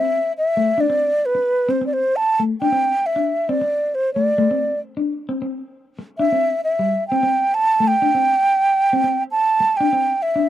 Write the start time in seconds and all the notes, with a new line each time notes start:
Already playing: E5
0.00 C4
0.38 E5
0.57 A3
0.78 D4 D5
0.90 C4
1.26 B4
1.35 muted clean electric guitar stroke
1.69 C4 C5
1.81 C4
1.86 D5
1.93 C5
2.16 A5
2.40 A3
2.61 D4 G5
2.72 C4
3.06 E5
3.16 D4
3.49 C4 D5
3.61 muted clean electric guitar stroke
3.95 C5
4.14 A3 D5
4.38 A3
4.51 C4
4.97 D4
5.29 C4
5.42 C4
5.99 muted clean electric guitar stroke
6.18 D4 E5
6.32 C4
6.64 E5
6.79 G3
7.08 C4 G5
7.23 C4
7.54 A5
7.80 A3
7.88 G5
8.02 D4
8.15 C4
8.93 C4
9.04 C4
9.31 A5
9.60 muted clean electric guitar stroke
9.77 D4 G5
9.93 C4
10.22 E5
10.36 D4